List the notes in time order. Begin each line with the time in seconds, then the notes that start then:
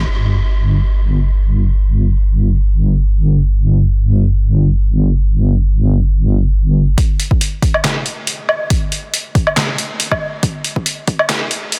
0.07 G1
6.98 kick, closed hi-hat
7.20 closed hi-hat
7.31 kick
7.41 closed hi-hat
7.62 kick, closed hi-hat
7.74 low woodblock
7.84 snare, clap, closed hi-hat
8.06 closed hi-hat
8.27 closed hi-hat
8.49 low woodblock
8.70 kick, closed hi-hat
8.92 closed hi-hat
9.14 closed hi-hat
9.35 kick, closed hi-hat
9.47 low woodblock
9.57 snare, clap, closed hi-hat
9.78 closed hi-hat
10.00 closed hi-hat
10.12 kick, low woodblock
10.43 kick, closed hi-hat
10.64 closed hi-hat
10.76 kick
10.86 closed hi-hat
11.07 kick, closed hi-hat
11.19 low woodblock
11.29 snare, clap, closed hi-hat
11.51 closed hi-hat
11.72 closed hi-hat